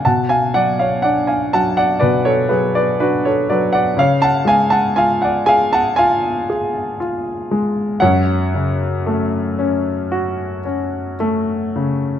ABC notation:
X:1
M:4/4
L:1/16
Q:1/4=59
K:F#m
V:1 name="Grand piano"
[fa] [^eg] [df] [ce] [df] [eg] [fa] [df] [Bd] [Ac] [GB] [Bd] [FB] [Ac] [Bd] [df] | [c^e] [fa] [eg] [fa] [eg] [df] [eg] [fa] [eg]8 | [cf]12 z4 |]
V:2 name="Grand piano" clef=bass
B,,2 F,2 D2 F,2 B,,2 F,2 D2 F,2 | C,2 G,2 ^E2 G2 E2 G2 E2 G,2 | F,,2 C,2 A,2 C2 F2 C2 A,2 C,2 |]